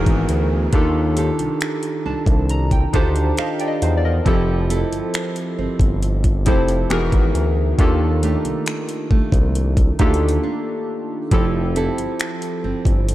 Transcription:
Already playing: E3 B3 D#4 F#4 G#4 A#4, downlifter
0.06 G#1, kick, closed hi-hat
0.29 D2, closed hi-hat
0.72 D#2 D#3 D4 F4 G4 A4, kick, closed hi-hat
1.17 D4 G4 A4, closed hi-hat
1.39 C2, closed hi-hat
1.61 finger snap, closed hi-hat
1.83 closed hi-hat
2.06 C2 D4 A5
2.26 C2, kick, closed hi-hat
2.49 A#5, closed hi-hat
2.71 G5, kick, closed hi-hat
2.93 D2 D4 D#4 F4 G4 A4 C5 A5, kick, closed hi-hat
3.16 closed hi-hat
3.37 G4 D#5 F5 A5, finger snap, closed hi-hat
3.60 D5 G5, closed hi-hat
3.68 D#5
3.82 E2 C5 F5, closed hi-hat
3.97 D5
4.05 A#4 D#5
4.25 F1 F3 C4 E4 G4 A4, kick, closed hi-hat
4.70 C4 E4 A4, closed hi-hat
4.92 G1, closed hi-hat
5.14 finger snap, closed hi-hat
5.36 closed hi-hat
5.58 G1 C4
5.79 G1, kick, closed hi-hat
6.02 closed hi-hat
6.24 kick, closed hi-hat
6.46 F1 F3 C4 E4 G4 A4 C5, kick, closed hi-hat
6.68 closed hi-hat
6.90 E1 E3 B3 D#4 F#4 G#4 A#4, finger snap, closed hi-hat
7.12 G#1, kick, closed hi-hat
7.35 D2, closed hi-hat
7.78 D#2 D#3 A#3 D4 F4 G4 A4, kick, closed hi-hat
8.23 A3 D4 G4, closed hi-hat
8.45 C2, closed hi-hat
8.66 finger snap, closed hi-hat
8.89 closed hi-hat
9.11 C2 A3, kick
9.32 C2, kick, closed hi-hat
9.55 closed hi-hat
9.77 kick, closed hi-hat
9.99 D2 A3 A#3 D4 D#4 F4 G4 A4, kick, closed hi-hat
10.14 closed hi-hat
10.29 closed hi-hat
10.43 D4
11.31 F1 F3 C4 E4 G4 A4, kick, closed hi-hat
11.76 C4 E4 A4, closed hi-hat
11.98 G1, closed hi-hat
12.20 finger snap, closed hi-hat
12.42 closed hi-hat
12.64 G1 C4
12.85 G1, kick, closed hi-hat
13.09 closed hi-hat

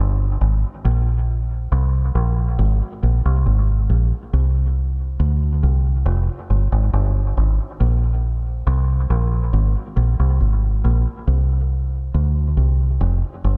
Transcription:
0.00 G1
0.41 G#1
0.85 A#1
1.72 C2
2.15 A#1
2.59 G#1
3.03 A#1
3.25 C2
3.46 G#1
3.90 A#1
4.33 C2
5.20 D2
5.63 C2
6.06 F1
6.50 G1
6.72 G#1
6.93 G1
7.37 G#1
7.80 A#1
8.67 C2
9.10 A#1
9.53 G#1
9.97 A#1
10.20 C2
10.41 G#1
10.85 A#1
11.27 C2
12.14 D2
12.57 C2
13.01 F1
13.44 G1

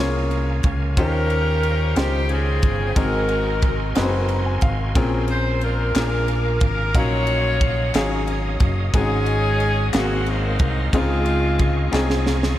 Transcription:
Already playing: C2 C#3 A#3 C#4 F4 G#4 A#4 C#5 F5 G#5
0.31 ride
0.63 C#2, kick, ride
0.97 D#3 C#4 D#4 F4 G4 A#4 C5 G5, kick, ride
1.30 ride
1.63 ride
1.96 C#2 C#3 D#4 F4 G4 C5 G5, snare, ride
2.29 C4 C#4 G#4, ride
2.62 G1, kick, ride
2.96 G#1 G#2 C4 D#4 F#4 G#4 A#4 G#5 C6, kick, ride
3.29 ride
3.62 kick, ride
3.95 F#1 C4 D#4 F#4 G#4 B4, snare, ride
4.03 C5
4.29 A#5, ride
4.46 G#5
4.61 G#1 F5, kick, ride
4.95 A#1 A#2 C4 C#4 F4 G#4 A#4 C5, kick, ride
5.28 C5, ride
5.61 D4 F4 A#4, ride
5.95 A#1 A#2 A#3 D4 F4 G#4 A#4 F5 D6, snare, clap, ride
6.28 ride
6.60 G#1, kick, ride
6.65 A#4
6.94 A#1 A#2 F#3 C#4 D#4 F4 F#4 A#4 C#5 D#5 F5 D#6, kick, ride
6.99 C#5
7.27 ride
7.61 kick, ride
7.94 G#1 F#3 C#4 D#4 G#4 F5, snare, clap, ride
8.27 ride
8.60 F#1, kick, ride
8.94 G#1 G#2 G#3 C4 C#4 D#4 F#4 G#4 G#5, kick, ride
9.00 C#4
9.26 ride
9.60 ride
9.93 G#1 G#2 A#3 C4 F#4 G#4 A#4 F5 C6, snare, clap, ride
9.97 F#4
10.26 F#3 C4 D#4, ride
10.59 C2, kick, ride
10.93 C#2 C#3 G#3 C4 D#4 F4 G#4 D#5 C#6, kick, ride
11.26 ride
11.59 kick, ride
11.92 C2 C4 C#4 D#4 F4 G#4, snare, clap
12.10 snare
12.27 snare
12.43 snare

